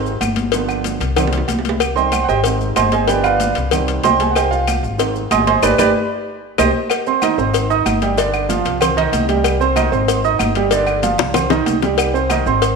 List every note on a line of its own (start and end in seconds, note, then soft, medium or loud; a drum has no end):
0.00 0.17 G#1 loud
0.00 0.10 G#3 medium
0.00 0.11 C4 medium
0.05 high conga soft
0.05 maracas soft
0.20 0.95 G1 medium
0.20 cowbell medium
0.20 high conga medium
0.20 low agogo loud
0.20 claves medium
0.20 maracas medium
0.36 cowbell medium
0.36 high conga medium
0.36 maracas soft
0.52 0.98 D3 medium
0.52 0.99 F3 medium
0.52 0.99 B3 medium
0.52 cowbell loud
0.52 low agogo medium
0.52 maracas medium
0.69 high conga soft
0.69 low agogo loud
0.69 claves medium
0.69 maracas soft
0.84 cowbell medium
0.84 high conga medium
0.84 maracas medium
1.00 1.45 C2 medium
1.00 cowbell medium
1.00 high conga soft
1.00 low agogo medium
1.00 maracas soft
1.16 1.38 D#3 medium
1.16 1.38 G3 medium
1.16 1.39 C4 medium
1.16 cowbell loud
1.16 high conga soft
1.16 low conga loud
1.16 high timbale medium
1.16 low agogo loud
1.16 claves medium
1.16 maracas medium
1.27 low timbale medium
1.33 cowbell medium
1.33 high conga soft
1.33 low conga medium
1.33 maracas soft
1.38 low timbale medium
1.48 2.23 C2 medium
1.48 cowbell medium
1.48 high conga medium
1.48 low timbale medium
1.48 low agogo medium
1.48 maracas medium
1.59 low timbale medium
1.65 cowbell medium
1.65 high conga medium
1.65 maracas soft
1.69 low timbale loud
1.80 cowbell loud
1.80 high conga soft
1.80 low agogo loud
1.80 claves medium
1.80 maracas medium
1.95 2.10 D#3 medium
1.95 2.10 G3 soft
1.95 2.11 C4 medium
1.95 2.26 C5 medium
1.95 2.26 D#5 medium
1.95 2.26 G5 medium
1.95 2.26 C6 loud
1.95 high conga soft
1.95 maracas soft
2.12 cowbell medium
2.12 high conga medium
2.12 low agogo loud
2.12 claves medium
2.12 maracas medium
2.24 2.26 F#5 medium
2.28 2.73 G#1 medium
2.28 2.39 G4 medium
2.28 2.38 C5 medium
2.28 2.38 D#5 medium
2.28 2.38 G5 loud
2.28 high conga soft
2.28 maracas soft
2.44 3.05 D#3 medium
2.44 3.06 G#3 medium
2.44 3.06 C4 medium
2.44 cowbell loud
2.44 high conga soft
2.44 low agogo medium
2.44 maracas medium
2.61 high conga soft
2.61 maracas soft
2.76 3.50 G1 medium
2.76 2.91 C5 medium
2.76 2.91 D#5 medium
2.76 2.91 G#5 medium
2.76 2.92 C6 medium
2.76 cowbell medium
2.76 high conga medium
2.76 low timbale medium
2.76 low agogo loud
2.76 claves medium
2.76 maracas medium
2.92 3.08 G#4 medium
2.92 3.08 C5 medium
2.92 3.08 D#5 medium
2.92 3.08 G#5 medium
2.92 cowbell medium
2.92 high conga medium
2.92 maracas soft
3.07 3.53 D3 medium
3.07 3.54 F3 soft
3.07 3.54 B3 medium
3.07 3.24 G4 medium
3.07 3.23 B4 medium
3.07 3.23 D5 medium
3.07 3.24 G5 medium
3.07 cowbell loud
3.07 high conga soft
3.07 low agogo medium
3.07 maracas medium
3.24 3.54 F4 medium
3.24 3.54 B4 medium
3.24 3.54 D5 medium
3.24 3.54 F5 loud
3.24 low agogo loud
3.24 claves medium
3.24 maracas soft
3.40 cowbell medium
3.40 high conga loud
3.40 maracas medium
3.55 4.01 C2 loud
3.55 cowbell medium
3.55 high conga soft
3.55 low agogo medium
3.55 maracas soft
3.71 4.17 D#3 medium
3.71 4.18 G3 soft
3.71 4.18 C4 medium
3.71 cowbell loud
3.71 high conga soft
3.71 low conga medium
3.71 low agogo loud
3.71 claves medium
3.71 maracas medium
3.88 cowbell medium
3.88 high conga soft
3.88 maracas soft
4.04 4.78 C2 loud
4.04 4.20 C5 medium
4.04 4.20 D#5 medium
4.04 4.20 G5 medium
4.04 4.19 C6 loud
4.04 cowbell medium
4.04 high conga loud
4.04 low timbale medium
4.04 low agogo medium
4.04 maracas medium
4.20 4.36 G#4 medium
4.20 4.35 G#5 medium
4.20 cowbell medium
4.20 high conga medium
4.20 maracas soft
4.31 4.33 F#5 medium
4.35 4.51 G4 medium
4.35 4.51 C5 medium
4.35 4.51 D#5 medium
4.35 4.51 G5 medium
4.35 cowbell loud
4.35 high conga soft
4.35 low agogo loud
4.35 claves medium
4.35 maracas medium
4.51 4.81 F4 medium
4.51 4.81 F5 loud
4.51 high conga soft
4.51 maracas soft
4.67 cowbell medium
4.67 high conga medium
4.67 low agogo loud
4.67 claves medium
4.67 maracas medium
4.83 5.28 G#1 loud
4.83 high conga soft
4.83 maracas soft
4.98 5.20 D#3 medium
4.98 5.20 G#3 medium
4.98 5.21 C4 medium
4.98 cowbell loud
4.98 high conga soft
4.98 low agogo medium
4.98 maracas medium
5.16 high conga soft
5.16 maracas soft
5.31 5.61 G1 loud
5.31 5.46 D#5 medium
5.31 5.46 G#5 medium
5.31 5.46 C6 medium
5.31 5.47 D#6 loud
5.31 cowbell medium
5.31 high conga medium
5.31 low timbale medium
5.31 low agogo loud
5.31 claves medium
5.31 maracas medium
5.47 5.63 C5 medium
5.47 5.63 D#5 medium
5.47 5.63 G#5 medium
5.47 5.63 C6 loud
5.47 cowbell medium
5.47 high conga medium
5.47 maracas soft
5.63 5.75 G1 medium
5.63 5.73 G4 medium
5.63 5.73 B4 loud
5.63 5.73 D5 loud
5.63 cowbell loud
5.63 high conga loud
5.63 high timbale loud
5.63 claves loud
5.63 maracas loud
5.78 5.91 G1 loud
5.78 5.89 G4 loud
5.78 5.89 B4 loud
5.78 5.89 D5 loud
5.78 cowbell loud
5.78 high conga loud
5.78 high timbale loud
5.78 claves loud
5.78 maracas loud
6.58 6.70 C2 loud
6.58 6.69 G4 loud
6.58 6.69 C5 medium
6.58 6.69 D#5 loud
6.58 cowbell loud
6.58 high conga loud
6.58 high timbale loud
6.58 claves loud
6.58 maracas medium
6.90 cowbell loud
6.90 high conga soft
6.90 low agogo loud
6.90 claves medium
6.90 maracas medium
7.07 7.20 C4 medium
7.07 7.20 C5 medium
7.07 7.20 C6 medium
7.07 high conga soft
7.07 maracas soft
7.22 7.36 D#3 medium
7.22 7.36 D#4 medium
7.22 7.36 D#5 medium
7.22 cowbell medium
7.22 high conga medium
7.22 low agogo loud
7.22 claves medium
7.22 maracas medium
7.38 7.82 G#1 loud
7.38 7.64 C4 medium
7.38 7.64 C5 medium
7.38 7.65 C6 medium
7.38 maracas soft
7.54 cowbell loud
7.54 high conga soft
7.54 low agogo medium
7.54 maracas medium
7.70 7.96 D#4 medium
7.70 7.96 D#5 medium
7.70 7.96 D#6 medium
7.70 high conga soft
7.70 maracas soft
7.85 8.59 G1 medium
7.85 cowbell medium
7.85 high conga medium
7.85 low timbale medium
7.85 low agogo loud
7.85 claves medium
7.85 maracas medium
8.02 8.15 G3 medium
8.02 8.15 G4 medium
8.02 8.15 G5 medium
8.02 cowbell medium
8.02 high conga medium
8.02 maracas soft
8.18 8.44 D3 medium
8.18 8.44 D4 medium
8.18 8.44 D5 medium
8.18 cowbell loud
8.18 low agogo medium
8.18 maracas medium
8.34 high conga soft
8.34 low agogo loud
8.34 claves medium
8.34 maracas soft
8.49 8.75 F3 medium
8.49 8.75 F4 medium
8.49 8.76 F5 medium
8.49 cowbell medium
8.49 high conga loud
8.49 maracas medium
8.65 9.09 C2 medium
8.65 cowbell medium
8.65 high conga soft
8.65 low agogo medium
8.65 maracas soft
8.81 8.94 C4 medium
8.81 8.94 C5 medium
8.81 8.94 C6 medium
8.81 cowbell loud
8.81 high conga soft
8.81 low conga medium
8.81 low agogo loud
8.81 claves medium
8.81 maracas medium
8.97 9.23 D#3 loud
8.97 9.23 D#4 loud
8.97 9.23 D#5 medium
8.97 cowbell medium
8.97 high conga soft
8.97 low conga medium
8.97 maracas soft
9.12 9.86 C2 loud
9.12 cowbell medium
9.12 high conga medium
9.12 low agogo medium
9.12 maracas medium
9.29 9.55 G3 medium
9.29 9.55 G4 medium
9.29 9.55 G5 medium
9.29 cowbell medium
9.29 high conga medium
9.29 maracas soft
9.44 cowbell loud
9.44 low agogo loud
9.44 claves medium
9.44 maracas medium
9.60 9.73 C4 medium
9.60 9.74 C5 medium
9.60 9.74 C6 medium
9.60 high conga soft
9.60 maracas soft
9.76 9.89 D#3 medium
9.76 9.89 D#4 medium
9.76 9.89 D#5 medium
9.76 cowbell medium
9.76 high conga medium
9.76 low agogo loud
9.76 claves medium
9.76 maracas medium
9.92 10.36 G#1 loud
9.92 10.18 C4 medium
9.92 10.18 C5 medium
9.92 10.19 C6 medium
9.92 high conga soft
9.92 maracas soft
10.08 cowbell loud
10.08 high conga soft
10.08 low agogo medium
10.08 maracas medium
10.24 10.50 D#4 medium
10.24 10.50 D#5 medium
10.24 10.50 D#6 medium
10.24 high conga soft
10.24 maracas soft
10.39 11.13 G1 medium
10.39 cowbell medium
10.39 high conga medium
10.39 low agogo loud
10.39 claves medium
10.39 maracas medium
10.55 10.69 G3 medium
10.55 10.69 G4 medium
10.55 10.69 G5 medium
10.55 cowbell medium
10.55 maracas soft
10.71 10.98 D3 medium
10.71 10.98 D4 medium
10.71 10.98 D5 medium
10.71 cowbell loud
10.71 high conga soft
10.71 low agogo medium
10.71 maracas medium
10.87 high conga soft
10.87 low agogo loud
10.87 claves medium
10.87 maracas soft
11.03 11.29 F3 medium
11.03 11.29 F4 medium
11.03 11.29 F5 medium
11.03 cowbell medium
11.03 high conga medium
11.03 maracas medium
11.18 11.63 C2 medium
11.18 cowbell medium
11.18 high bongo loud
11.18 high conga soft
11.18 low agogo medium
11.18 maracas soft
11.33 11.47 C4 medium
11.33 11.47 C5 medium
11.33 11.48 C6 medium
11.33 cowbell loud
11.33 high bongo medium
11.33 high conga soft
11.33 low conga medium
11.33 low agogo loud
11.33 claves medium
11.33 maracas medium
11.50 11.76 D#3 medium
11.50 11.77 D#4 medium
11.50 11.77 D#5 medium
11.50 cowbell medium
11.50 low bongo loud
11.50 high conga soft
11.50 low conga medium
11.50 maracas soft
11.66 12.40 C2 medium
11.66 cowbell medium
11.66 high conga medium
11.66 low timbale medium
11.66 low agogo medium
11.66 maracas medium
11.82 12.09 G3 medium
11.82 12.09 G4 medium
11.82 12.09 G5 medium
11.82 cowbell medium
11.82 low bongo medium
11.82 maracas soft
11.98 cowbell loud
11.98 high conga soft
11.98 low agogo loud
11.98 claves medium
11.98 maracas medium
12.14 12.27 C4 medium
12.14 12.27 C5 medium
12.14 12.28 C6 medium
12.14 high conga soft
12.14 maracas soft
12.30 12.44 D#3 medium
12.30 12.44 D#4 medium
12.30 12.44 D#5 medium
12.30 cowbell medium
12.30 high conga loud
12.30 low agogo loud
12.30 claves medium
12.30 maracas medium
12.46 12.76 G#1 loud
12.46 12.72 C4 medium
12.46 12.72 C5 medium
12.46 12.73 C6 medium
12.46 high conga soft
12.46 maracas soft
12.62 cowbell loud
12.62 high conga soft
12.62 low agogo medium
12.62 maracas medium